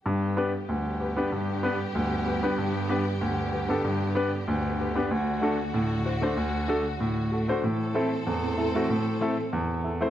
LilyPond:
<<
  \new Staff \with { instrumentName = "Grand piano" } { \time 4/4 \key g \major \tempo 4 = 95 r8 <b d' g' b'>16 r8. <g' b'>16 <b d' g' b'>16 r8 <b d' g' b'>16 r8. <g' b'>16 <b d' g' b'>16 | r8 <b d' g' b'>16 r8. <g' b'>16 <b d' g' a'>16 r8 <b d' g' b'>16 r8. <g' b'>16 <b d' g' b'>16 | r8 <a d' fis' a'>16 r8. <fis' c''>16 <a d' fis' c''>16 r8 <a d' fis' a'>16 r8. <fis' a'>16 <a d' fis' c''>16 | r8 <a c' e' a'>16 r8. <e' a'>16 <a c' e' fis'>16 r8 <a c' e' a'>16 r8. <e' a'>16 <a c' e' c''>16 | }
  \new Staff \with { instrumentName = "Grand piano" } { \clef bass \time 4/4 \key g \major g,4 d,4 g,4 d,4 | g,4 d,4 g,4 d,4 | d,4 a,4 d,4 a,4 | a,4 e,4 a,4 e,4 | }
  \new Staff \with { instrumentName = "String section" } { \time 4/4 \key g \major << { <g, b g'>1~ | <g, b g'>1 | <d, a fis'>1 | <a, c' a'>1 | } \\ { d1~ | d1~ | d1 | e1 | } >> }
>>